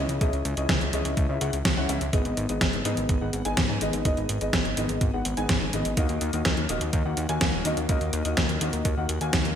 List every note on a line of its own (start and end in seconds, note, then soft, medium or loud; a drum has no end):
0.00 0.18 C#4 medium
0.00 0.18 E4 medium
0.00 0.18 G#4 medium
0.00 0.18 D#5 medium
0.09 0.19 C#2 medium
0.09 closed hi-hat soft
0.21 0.31 B1 loud
0.21 0.54 C#4 medium
0.21 0.54 E4 medium
0.21 0.54 G#4 medium
0.21 0.54 D#5 loud
0.21 kick loud
0.21 closed hi-hat medium
0.33 0.43 C#2 medium
0.33 closed hi-hat soft
0.45 0.55 C#2 loud
0.45 closed hi-hat medium
0.57 0.67 C#2 medium
0.57 0.90 C#4 medium
0.57 0.90 E4 medium
0.57 0.90 G#4 medium
0.57 0.90 D#5 medium
0.57 closed hi-hat soft
0.69 0.79 C#2 loud
0.69 kick loud
0.69 snare loud
0.69 closed hi-hat medium
0.81 0.91 C#2 medium
0.81 closed hi-hat soft
0.93 1.03 C#2 medium
0.93 1.26 C#4 medium
0.93 1.26 E4 medium
0.93 1.26 G#4 medium
0.93 1.26 D#5 loud
0.93 closed hi-hat medium
1.05 1.15 C#2 medium
1.05 closed hi-hat soft
1.17 1.27 C#2 loud
1.17 kick loud
1.17 closed hi-hat medium
1.29 1.39 C#2 medium
1.29 1.39 C#4 medium
1.29 1.39 E4 medium
1.29 1.39 G#4 medium
1.29 1.39 E5 medium
1.41 1.51 C#2 medium
1.41 1.54 C#4 medium
1.41 1.54 E4 medium
1.41 1.54 G#4 medium
1.41 1.54 F#5 medium
1.41 closed hi-hat medium
1.53 1.63 C#2 medium
1.53 closed hi-hat soft
1.65 1.75 C#2 loud
1.65 kick loud
1.65 snare loud
1.65 closed hi-hat medium
1.77 1.87 C#2 medium
1.77 1.87 C#4 loud
1.77 1.87 E4 medium
1.77 1.87 G#4 medium
1.77 1.87 F#5 loud
1.89 1.99 C#2 medium
1.89 2.02 C#4 medium
1.89 2.02 E4 medium
1.89 2.02 G#4 medium
1.89 2.02 E5 medium
1.89 closed hi-hat medium
2.01 2.11 C#2 medium
2.01 closed hi-hat soft
2.13 2.23 G#1 loud
2.13 2.46 B3 medium
2.13 2.46 D#4 medium
2.13 2.46 G#4 medium
2.13 2.46 D#5 loud
2.13 kick loud
2.13 closed hi-hat medium
2.25 2.35 G#1 medium
2.25 closed hi-hat soft
2.37 2.47 G#1 loud
2.37 closed hi-hat medium
2.49 2.59 G#1 medium
2.49 2.82 B3 medium
2.49 2.82 D#4 medium
2.49 2.82 G#4 medium
2.49 2.82 D#5 medium
2.49 closed hi-hat soft
2.61 2.71 G#1 medium
2.61 kick loud
2.61 snare loud
2.61 closed hi-hat medium
2.73 2.83 G#1 medium
2.73 closed hi-hat soft
2.85 2.95 G#2 loud
2.85 3.18 B3 medium
2.85 3.18 D#4 medium
2.85 3.18 G#4 medium
2.85 3.18 D#5 loud
2.85 closed hi-hat medium
2.97 3.07 G#1 medium
2.97 closed hi-hat soft
3.09 3.19 G#1 loud
3.09 kick loud
3.09 closed hi-hat medium
3.21 3.31 G#1 medium
3.21 3.42 B3 medium
3.21 3.42 D#4 medium
3.21 3.42 G#4 medium
3.21 3.42 F#5 medium
3.33 3.43 G#1 medium
3.33 closed hi-hat medium
3.45 3.55 G#1 medium
3.45 3.78 B3 medium
3.45 3.78 D#4 medium
3.45 3.78 G#4 medium
3.45 3.78 G#5 loud
3.45 closed hi-hat soft
3.57 3.67 G#1 loud
3.57 kick loud
3.57 snare loud
3.57 closed hi-hat medium
3.69 3.79 G#2 medium
3.81 3.91 G#1 medium
3.81 4.02 B3 medium
3.81 4.02 D#4 medium
3.81 4.02 G#4 medium
3.81 4.02 D#5 loud
3.81 closed hi-hat medium
3.93 4.03 G#1 medium
3.93 closed hi-hat soft
4.05 4.15 F#1 loud
4.05 4.38 B3 medium
4.05 4.38 D#4 medium
4.05 4.38 G#4 medium
4.05 4.38 D#5 loud
4.05 kick loud
4.05 closed hi-hat medium
4.17 4.27 G#1 medium
4.17 closed hi-hat soft
4.29 4.39 G#1 medium
4.29 closed hi-hat medium
4.41 4.51 G#1 medium
4.41 4.74 B3 medium
4.41 4.74 D#4 medium
4.41 4.74 G#4 medium
4.41 4.74 D#5 medium
4.41 closed hi-hat soft
4.53 4.63 G#1 loud
4.53 kick loud
4.53 snare loud
4.53 closed hi-hat medium
4.65 4.75 G#1 medium
4.65 closed hi-hat soft
4.77 4.87 G#1 medium
4.77 5.10 B3 medium
4.77 5.10 D#4 medium
4.77 5.10 G#4 medium
4.77 5.10 D#5 medium
4.77 closed hi-hat medium
4.89 4.99 G#1 medium
4.89 closed hi-hat medium
5.01 5.11 G#1 loud
5.01 kick loud
5.01 closed hi-hat medium
5.13 5.23 G#1 medium
5.13 5.34 B3 medium
5.13 5.34 D#4 medium
5.13 5.34 G#4 medium
5.13 5.34 F#5 medium
5.25 5.35 G#1 medium
5.25 closed hi-hat medium
5.37 5.47 G#1 medium
5.37 5.70 B3 medium
5.37 5.70 D#4 medium
5.37 5.70 G#4 medium
5.37 5.70 G#5 loud
5.37 closed hi-hat soft
5.49 5.59 G#1 medium
5.49 kick loud
5.49 snare loud
5.49 closed hi-hat medium
5.61 5.71 G#1 medium
5.73 5.83 G#1 loud
5.73 5.94 B3 medium
5.73 5.94 D#4 medium
5.73 5.94 G#4 medium
5.73 5.94 D#5 loud
5.73 closed hi-hat medium
5.85 5.95 G#1 medium
5.85 closed hi-hat soft
5.97 6.07 D#2 loud
5.97 6.30 A#3 medium
5.97 6.30 D#4 medium
5.97 6.30 F#4 medium
5.97 6.30 D#5 loud
5.97 kick loud
5.97 closed hi-hat medium
6.09 6.19 D#2 medium
6.09 closed hi-hat soft
6.21 6.31 D#2 medium
6.21 closed hi-hat medium
6.33 6.43 D#2 medium
6.33 6.66 A#3 medium
6.33 6.66 D#4 medium
6.33 6.66 F#4 medium
6.33 6.66 D#5 medium
6.33 closed hi-hat soft
6.45 6.55 D#2 medium
6.45 kick loud
6.45 snare loud
6.45 closed hi-hat medium
6.57 6.67 D#2 medium
6.57 closed hi-hat soft
6.69 6.79 D#1 medium
6.69 7.02 A#3 medium
6.69 7.02 D#4 medium
6.69 7.02 F#4 medium
6.69 7.02 D#5 loud
6.69 closed hi-hat medium
6.81 6.91 D#2 medium
6.81 closed hi-hat medium
6.93 7.03 D#2 loud
6.93 kick loud
6.93 closed hi-hat medium
7.05 7.15 D#2 medium
7.05 7.26 A#3 medium
7.05 7.26 D#4 medium
7.05 7.26 F#4 medium
7.05 7.26 F#5 medium
7.17 7.27 D#2 medium
7.17 closed hi-hat medium
7.29 7.39 D#2 medium
7.29 7.62 A#3 medium
7.29 7.62 D#4 medium
7.29 7.62 F#4 medium
7.29 7.62 G#5 loud
7.29 closed hi-hat medium
7.41 7.51 D#2 loud
7.41 kick loud
7.41 snare loud
7.41 closed hi-hat medium
7.53 7.63 D#1 medium
7.65 7.75 D#2 medium
7.65 7.86 A#3 medium
7.65 7.86 D#4 medium
7.65 7.86 F#4 medium
7.65 7.86 D#5 loud
7.65 closed hi-hat medium
7.77 7.87 D#2 medium
7.77 closed hi-hat medium
7.89 7.99 C#2 medium
7.89 8.22 A#3 loud
7.89 8.22 D#4 medium
7.89 8.22 F#4 medium
7.89 8.22 D#5 loud
7.89 kick loud
7.89 closed hi-hat medium
8.01 8.11 D#2 medium
8.01 closed hi-hat soft
8.13 8.23 D#2 loud
8.13 closed hi-hat medium
8.25 8.35 D#2 medium
8.25 8.58 A#3 medium
8.25 8.58 D#4 medium
8.25 8.58 F#4 medium
8.25 8.58 D#5 medium
8.25 closed hi-hat medium
8.37 8.47 D#2 loud
8.37 kick loud
8.37 snare loud
8.37 closed hi-hat medium
8.49 8.59 D#2 medium
8.49 closed hi-hat soft
8.61 8.71 D#2 medium
8.61 8.94 A#3 medium
8.61 8.94 D#4 medium
8.61 8.94 F#4 medium
8.61 8.94 D#5 loud
8.61 closed hi-hat medium
8.73 8.83 D#2 medium
8.73 closed hi-hat medium
8.85 8.95 D#2 loud
8.85 kick loud
8.85 closed hi-hat medium
8.97 9.07 D#2 medium
8.97 9.18 A#3 medium
8.97 9.18 D#4 medium
8.97 9.18 F#4 medium
8.97 9.18 F#5 medium
9.09 9.19 D#2 medium
9.09 closed hi-hat medium
9.21 9.31 D#2 medium
9.21 9.54 A#3 medium
9.21 9.54 D#4 medium
9.21 9.54 F#4 medium
9.21 9.54 G#5 medium
9.21 closed hi-hat medium
9.33 9.43 D#2 medium
9.33 kick loud
9.33 snare loud
9.33 closed hi-hat medium
9.45 9.55 D#2 medium
9.45 closed hi-hat soft